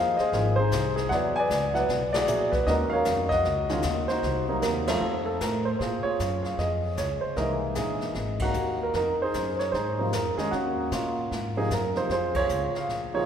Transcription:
Already playing: D#2 F3 A#3 D#4 G#4 C5 F5
0.17 G#4 C5 D#5, muted upright bass stroke, snare
0.32 G#1 F3 A#3 D#4 G#4, brush sweep, kick, snare
0.56 G#4 C5
0.60 D#4
0.71 C2, kick, snare, hi-hat pedal
0.96 G#4, snare
1.09 E2 F#3 B3 E4 G#4 D5 F#5, brush sweep, kick, snare
1.13 B4
1.36 D5 G#5
1.40 B4
1.50 C#2, kick, snare, hi-hat pedal
1.74 F#3 B3 E4 B4 F#5, snare
1.79 B4 D5
1.89 B1, brush sweep, kick, snare
2.13 F#4 G#4 D5, snare, ride
2.27 A#1 F#3 B3 E4 G#4, hi-hat pedal
2.52 B4, kick, snare
2.67 D#2 D#3 G#3 C#4 F#4 A#4 D#5, brush sweep, kick, snare
2.90 C#5 F5, muted upright bass stroke
2.94 A#4
3.05 F2, kick, snare, hi-hat pedal
3.29 F#4 A#4 D#5, kick, snare
3.44 C#2, brush sweep, kick, snare
3.69 D#3 G#3 C#4 F4, snare
3.82 D#2, kick, snare, hi-hat pedal
4.08 D#4 F#4 C5, snare
4.23 C2, brush sweep, kick, snare
4.48 C3 F#3 A#3 D#4
4.62 D#2 A#4, kick, snare, hi-hat pedal
4.87 F3 A3 C4 D#4 F4 A4, snare, ride
4.91 C4
5.01 F2, brush sweep
5.26 A4
5.41 A2 A#4, kick, snare, hi-hat pedal
5.65 C5
5.79 A#2 F4 G#4 C5, brush sweep, kick, snare
6.03 F4 G#4 C#5, muted upright bass stroke
6.19 F#2, kick, snare, hi-hat pedal
6.42 F5, snare
6.58 F2 G#4 D#5, brush sweep, kick, snare
6.97 C#2 C#5, kick, snare, hi-hat pedal
7.21 C5, muted upright bass stroke
7.36 C2 E3 G#3 A#3 D#4 E4 A#4 D#5, brush sweep, kick, snare
7.75 A#1 D#4 E4 G#4, kick, snare, hi-hat pedal
8.01 snare
8.14 G#1, brush sweep, kick, snare
8.39 D#4 F#4, kick, ride
8.44 A#3
8.54 D#2, hi-hat pedal
8.83 A#4
8.93 F2 A#4, brush sweep, kick, snare
8.98 D#4
9.19 C5, muted upright bass stroke
9.23 D#4 G#4
9.34 F#2, kick, snare, hi-hat pedal
9.56 C5 C#5, snare
9.72 G#2 D#4 G#4 C5, brush sweep, kick, snare
9.98 C3 F3 A#3 D#4
10.13 F2 A#4, kick, snare, hi-hat pedal
10.37 D#3 G#3 C#4 D#4 G#4, muted upright bass stroke, snare
10.51 D#2 A#3 C#4 F#4, brush sweep, kick, snare
10.91 A#2 A#3 C#4 F4, kick, snare, hi-hat pedal
11.31 G#2, brush sweep, kick, snare
11.57 C3 F3 A#3 D#4 G#4
11.71 F#2 A#4, kick, snare, hi-hat pedal
11.95 C3 F3 A#3 D#4 C5, snare
12.09 F2 F4 G#4 C5, brush sweep, kick, snare
12.34 F4 G#4 C#5, kick, ride
12.49 C#2, hi-hat pedal
12.74 F5, muted upright bass stroke, snare
12.88 A#1, brush sweep, kick, snare
13.14 C3 F3 A#3 D#4 F4 G#4 C#5

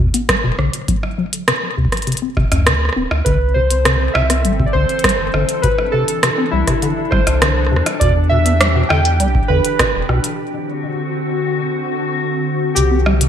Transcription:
0.00 E2
0.14 B3, closed hi-hat
0.29 G3, kick, cross-stick, closed hi-hat
0.44 E1 B2
0.59 B1 D3, cross-stick
0.74 closed hi-hat
0.88 F#3, kick, closed hi-hat
1.03 cross-stick
1.18 F#3
1.33 closed hi-hat
1.48 C3, cross-stick, closed hi-hat
1.77 D2 C3
1.85 kick
1.92 cross-stick, closed hi-hat
1.97 closed hi-hat
2.02 closed hi-hat
2.07 C3, closed hi-hat
2.12 closed hi-hat
2.17 closed hi-hat
2.22 C4
2.37 D1 C3, kick, cross-stick
2.52 D2 F#2, cross-stick, closed hi-hat
2.67 D3, cross-stick, closed hi-hat
2.81 cross-stick
2.85 cross-stick
2.89 cross-stick
2.93 D1 C4, cross-stick
3.11 D2, cross-stick
3.25 C2 D3 E3 C4 A4 B4, kick, closed hi-hat
3.54 C3 C5
3.71 closed hi-hat
3.85 C3, cross-stick, closed hi-hat
4.14 C2 C3 E5, cross-stick
4.30 C4, cross-stick, closed hi-hat
4.45 G1 G3, closed hi-hat
4.60 C3, kick
4.66 D5
4.73 C2 D3 C5
4.89 closed hi-hat
4.99 closed hi-hat
5.04 G3, kick, cross-stick, closed hi-hat
5.09 closed hi-hat
5.19 G1
5.34 G1 D3, cross-stick
5.49 closed hi-hat
5.62 C3 D4 B4, kick, closed hi-hat
5.78 cross-stick
5.92 C3 A4
6.08 closed hi-hat
6.23 C3, cross-stick, closed hi-hat
6.38 C4
6.51 C2 G3 E4
6.68 C3, kick, cross-stick, closed hi-hat
6.82 D3, closed hi-hat
7.11 G1 G3 C5, kick, cross-stick
7.27 C2, cross-stick, closed hi-hat
7.42 D3, cross-stick, closed hi-hat
7.57 cross-stick
7.67 cross-stick
7.71 E2 C3
7.76 cross-stick
7.86 cross-stick, closed hi-hat
8.00 E2 B2 G4 D5, kick, closed hi-hat
8.29 B2 E5
8.46 B3, closed hi-hat
8.61 G3, cross-stick, closed hi-hat
8.75 B2
8.89 E2 D3 G5, cross-stick
9.05 closed hi-hat
9.20 B1 G3, closed hi-hat
9.35 kick
9.48 E2 D3 B4
9.65 closed hi-hat
9.79 B2, kick, cross-stick, closed hi-hat
9.94 E1
10.09 B1 B2, cross-stick
10.24 closed hi-hat
10.39 D3 C4 F#4
12.75 C2 C3 E3 C4 G4 A4, closed hi-hat, shaker
12.91 C4
13.06 G3, cross-stick
13.21 C3, closed hi-hat

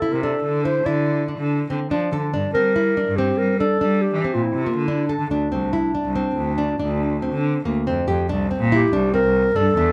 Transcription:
Already playing: A4
0.02 E4
0.12 C3 A#4
0.23 D4 A4
0.44 D3
0.65 E4 C5
0.86 D3 E4 D5
1.28 D4
1.39 D3
1.70 D3 C4
1.91 F3 D4
2.12 D3 A4
2.33 G2 D4
2.54 G3 C4 A#4
2.76 E4
2.97 D4
3.08 G2
3.16 C4 G4
3.38 G3 A#4
3.59 D4 A4
3.81 G3 D4
4.01 G4
4.13 E3
4.24 C4
4.33 A#2 F4
4.43 E4
4.56 C3
4.65 A#3 F4
4.77 D3
4.85 D4 E4
5.07 D4 A4
5.20 D3
5.30 D2 D4
5.52 C2 C4
5.73 E4
5.95 D4
6.05 C2
6.15 C4
6.37 D2
6.58 D4
6.80 D2 D4
7.22 C4
7.33 D3
7.65 D2 A#3
7.87 F2 C4
8.08 F2 G4
8.29 C2 D4
8.51 C4
8.62 A#2
8.72 E4 G4
8.93 C2 D4
9.14 C4 A#4
9.24 C2
9.56 G2 D4 A4
9.77 E2 D4

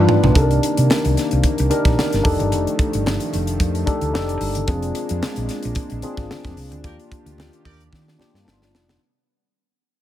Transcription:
Already playing: G3 B3 D4 D#4 F4 B4
0.09 floor tom
0.23 B1, floor tom, high conga
0.34 C2 C3 D#3 A#3 D4 D#4 G4 A4, kick, closed hi-hat, muted conga
0.42 A#4
0.51 closed hi-hat
0.63 closed hi-hat
0.77 C3, closed hi-hat
0.90 snare, high conga
1.05 C2, closed hi-hat
1.17 snare, closed hi-hat
1.31 C2, closed hi-hat
1.44 kick, closed hi-hat, muted conga
1.58 C2, closed hi-hat
1.70 D4 D#4 G4 A#4, closed hi-hat, muted conga
1.85 A#1, kick, snare, closed hi-hat
1.98 snare, high conga
2.13 G1, snare, closed hi-hat
2.23 F1 F3 A3 D4 D#4 G4 A4, kick, open hi-hat
2.39 G1, closed hi-hat, high conga
2.52 F1, closed hi-hat, muted conga
2.67 closed hi-hat
2.79 kick, closed hi-hat
2.93 G1, closed hi-hat
3.06 snare, high conga
3.20 closed hi-hat
3.33 F1, closed hi-hat, low conga
3.47 closed hi-hat
3.60 F2, kick, closed hi-hat, muted conga
3.75 closed hi-hat
3.86 D4 D#4 G4 A4, kick, closed hi-hat, muted conga, low conga
4.01 D2, closed hi-hat
4.13 F1 D4 D#4 G4 A4, snare, high conga
4.29 closed hi-hat
4.41 G1, open hi-hat
4.55 closed hi-hat, high conga
4.67 F1 G#3 A#3 C4 D4 F4 G#4, kick, closed hi-hat, muted conga
4.82 closed hi-hat
4.95 closed hi-hat
5.09 F2, closed hi-hat
5.22 snare, high conga
5.36 A#1, closed hi-hat
5.49 snare, closed hi-hat
5.63 A#1, closed hi-hat
5.75 kick, closed hi-hat, muted conga
5.90 A#1, closed hi-hat
6.02 C4 D4 F4 G#4, closed hi-hat, muted conga
6.17 G#1, kick, snare, closed hi-hat
6.31 snare, high conga
6.45 F1, kick, snare, closed hi-hat
6.57 C2, open hi-hat
6.71 D2, closed hi-hat, high conga
6.84 D#2 D#3 A#3 D4 F4 G4 A#4 D5, kick, closed hi-hat, muted conga
7.00 closed hi-hat
7.12 kick, closed hi-hat
7.26 D2, closed hi-hat
7.38 snare, high conga
7.53 closed hi-hat
7.65 D#2 G4 A#4 D5, kick, open hi-hat, low conga
7.80 closed hi-hat
7.93 D#3, kick, snare
8.08 snare
8.18 A#3 D4 F4 G4, snare, muted conga, low conga
8.34 G2, snare
8.45 G1 G3 B3 D4 D#4 E4, snare, high conga
8.52 F4
8.62 snare
8.74 F1, snare
8.89 snare, high conga

